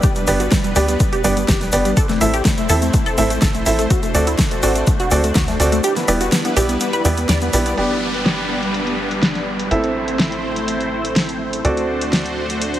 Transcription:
Already playing: G3 D4 B4
0.02 B3 G4, kick, closed hi-hat, shaker
0.15 G3, closed hi-hat, shaker
0.27 G1 G3 B3 D4 G4 D5, open hi-hat, shaker
0.40 F#4, closed hi-hat, shaker
0.51 G3, kick, snare, closed hi-hat, shaker
0.64 G3, closed hi-hat, shaker
0.76 D2 B3 D4 G4 D5, open hi-hat, shaker
0.88 G3, closed hi-hat, shaker
1.00 G3, kick, closed hi-hat, shaker
1.13 G4, closed hi-hat, shaker
1.24 G1 G3 B3 D4 G4 D5, open hi-hat, shaker
1.37 G3, closed hi-hat, shaker
1.48 G1 G4, kick, snare, closed hi-hat, shaker
1.61 G3, snare, closed hi-hat, shaker
1.72 G1 B3 D4 G4 D5, open hi-hat, shaker
1.85 G3, closed hi-hat, shaker
1.97 A3 C4 E4 A4 C5, kick, closed hi-hat, shaker
2.09 A3, snare, closed hi-hat, shaker
2.21 A1 A3 C4 E4 A4 E5, open hi-hat, shaker
2.34 G4, closed hi-hat, shaker
2.45 A3, kick, snare, closed hi-hat, shaker
2.58 A3, closed hi-hat, shaker
2.69 E2 C4 E4 A4 E5, open hi-hat, shaker
2.82 A3, closed hi-hat, shaker
2.94 A3, kick, closed hi-hat, shaker
3.06 A4, closed hi-hat, shaker
3.18 A1 A3 C4 E4 A4 E5, open hi-hat, shaker
3.30 A3, closed hi-hat, shaker
3.42 A1 A4, kick, snare, closed hi-hat, shaker
3.55 A3, closed hi-hat, shaker
3.66 A1 C4 E4 A4 E5, open hi-hat, shaker
3.79 A3, closed hi-hat, shaker
3.90 D4 F#4, kick, closed hi-hat, shaker
4.03 A3, closed hi-hat, shaker
4.15 D2 A3 C4 F#4 A4 D5, open hi-hat, shaker
4.27 E4, closed hi-hat, shaker
4.38 A3, kick, snare, closed hi-hat, shaker
4.51 A3, closed hi-hat, shaker
4.63 A1 C4 F#4 A4 D5, open hi-hat, shaker
4.75 A3, closed hi-hat, shaker
4.87 A3, kick, closed hi-hat, shaker
5.00 F#4, closed hi-hat, shaker
5.11 D2 A3 C4 F#4 A4 D5, open hi-hat, shaker
5.23 A3, closed hi-hat, shaker
5.35 D2 F#4, kick, snare, closed hi-hat, shaker
5.48 A3, snare, closed hi-hat, shaker
5.60 D2 C4 F#4 A4 D5, open hi-hat, shaker
5.72 A3, closed hi-hat, shaker
5.84 G3 E4 G4 B4, closed hi-hat, shaker
5.96 B3, snare, closed hi-hat, shaker
6.08 E1 B3 E4 G4 D5, open hi-hat, shaker
6.21 F#4, closed hi-hat, shaker
6.32 B3, snare, closed hi-hat, shaker
6.45 B3, closed hi-hat, shaker
6.57 B1 B3 E4 G4 D5, open hi-hat, shaker
6.69 B3, closed hi-hat, shaker
6.80 B3, closed hi-hat, shaker
6.93 B4, closed hi-hat, shaker
7.05 E2 B3 E4 G4 D5, open hi-hat, shaker
7.17 B3, closed hi-hat, shaker
7.29 E2 D5, snare, closed hi-hat, shaker
7.41 B3, closed hi-hat, shaker
7.53 B1 B3 E4 G4 D5, open hi-hat, shaker
7.66 B3, closed hi-hat, shaker
7.78 G1 G3 B3 D4 G4 B4 D5, closed hi-hat, downlifter
7.90 closed hi-hat
8.14 closed hi-hat
8.26 snare, closed hi-hat
8.38 closed hi-hat
8.63 closed hi-hat
8.74 closed hi-hat
8.87 closed hi-hat
9.11 closed hi-hat
9.22 snare, closed hi-hat
9.35 snare, closed hi-hat
9.59 closed hi-hat
9.71 A1 A3 C4 E4 A4 C5 E5, closed hi-hat
9.84 closed hi-hat
10.08 closed hi-hat
10.19 snare, closed hi-hat
10.32 closed hi-hat
10.56 closed hi-hat
10.68 closed hi-hat
10.81 closed hi-hat
11.05 closed hi-hat
11.16 snare, closed hi-hat
11.29 closed hi-hat
11.53 closed hi-hat
11.65 D2 A3 C4 D4 F#4 A4 C5 D5, closed hi-hat
11.77 closed hi-hat
12.01 closed hi-hat
12.13 snare, closed hi-hat
12.26 closed hi-hat
12.50 closed hi-hat
12.62 closed hi-hat
12.74 closed hi-hat

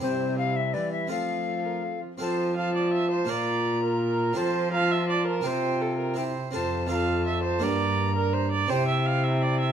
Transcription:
0.00 C3 G3 C4 E4 G4 C5
0.38 F5
0.56 E5
0.73 E3 D5
0.92 E5
1.07 F3 A3 C4 F4 A4 F5
1.47 A4
1.65 A#4
1.84 A4
2.01 F4
2.18 F3 C4 F4 A4 C5
2.22 A5
2.56 F4 F5 A5
2.75 D5
2.93 E5
3.11 C5
3.25 A#2 A#3 F4 A#4
3.29 A#2 F4 D5 A#5
3.83 A#4
4.33 F3 C4 F4 A4 C5 A5
4.37 F3
4.72 F4 F5 A#5
4.76 A5
4.92 E5
5.09 D5
5.27 A#4
5.41 C3 C4 F4 G4 G5
5.46 C5
5.82 A4
5.99 A#4
6.14 C4 E4 G4 C5 G5
6.51 F2 C4 F4 A4 C5
6.55 A5
6.87 C4 F4 A4 F5
6.92 A5 A#5
7.26 E5
7.43 C5
7.59 G2 A#3 D4 G4 D5
7.64 A#5
8.15 A#4
8.33 C5
8.52 D5
8.67 C3 C4 E4 G4 C5 G5
8.71 C3 E4
8.88 E5
9.06 F5
9.24 E5
9.42 D5
9.60 E5

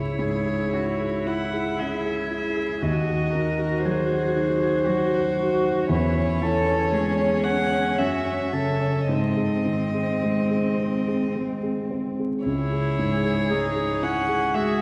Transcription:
Already playing: C#2 E4 G#4 C#5
0.19 G#2 G#4
0.46 G#4
0.72 C#4 F#4
1.00 G#4
1.26 E4 F#5
1.53 G#4
1.79 C#4 G#4 E5
2.05 G#4
2.31 E4
2.56 G#4
2.82 D#2 F#4 D#5
3.09 F#4
3.34 D#3 A#4
3.59 F#4
3.84 F#3 G#4 C5
4.11 F#4
4.36 D#4
4.61 F#4
4.86 F#3 F#4
5.12 F#4
5.37 D#4
5.63 F#4
5.89 E2 C#4 E4 C#5
6.16 C#5
6.41 E3 A4
6.66 C#5
6.92 G#3 G#4
7.17 C#5
7.44 C#4 F#5
7.72 C#5
7.98 F#2 F#4 E5
8.26 C#5
8.53 C#3 A4
8.80 C#5
9.09 G#2 C4 D#5
9.37 G#4
9.66 D#3
9.94 G#4
10.23 G#3
10.50 G#4
10.80 C4
11.08 G#4
11.35 G#3
11.63 G#4
11.91 C4
12.19 G#4
12.45 C#2 E4 G#4 C#5
12.72 G#4
12.99 G#2
13.25 G#4
13.50 G#3 D#4
13.76 G#4
14.02 C#4 E4 F#5
14.28 G#4
14.54 G#3 F#4 G#4 E5

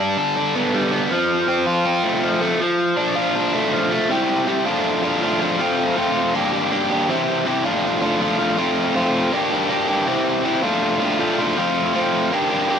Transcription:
Already playing: G3
0.00 D4
0.17 A4
0.37 D4
0.55 B3
0.74 G3
0.93 B3
1.11 F3
1.48 C4
1.67 F4
1.86 C4
2.04 A3
2.24 F3
2.41 A3
2.60 F3
2.96 D4
3.15 F4
3.35 D4
3.53 A3
3.72 F3
3.91 A3
4.09 G3 C4 E4 G4
4.46 G3 C4 E4 G4
4.66 F3 A3 D4 F4
5.03 A3 D4 F4
5.21 F3 A3 D4 F4
5.40 A3 D4 F4
5.59 F3 A3 C4 F4
5.96 F3 A3 C4 F4
6.34 A#3 D4 G4
6.52 D4 G4
6.72 A#3 D4 G4
6.90 D4 G4
7.09 E3 C4 E4 G4
7.46 E3 C4 E4 G4
7.65 F3 A3 D4 F4
8.02 A3 D4 F4
8.20 F3 A3 D4 F4
8.39 A3 D4 F4
8.57 A3 C4 F4
8.94 A3 C4 F4
9.32 A#3 D4 G4
9.51 D4 G4
9.69 A#3 D4 G4
9.88 D4 G4
10.07 E3 C4 E4 G4
10.45 E3 C4 E4 G4
10.63 F3 A3 D4 F4
11.00 A3 D4 F4
11.19 F3 A3 D4 F4
11.39 A3 D4 F4
11.57 F3 A3 C4 F4
11.94 F3 A3 C4 F4
12.32 A#3 D4 G4
12.50 D4 G4
12.68 A#3 D4 G4

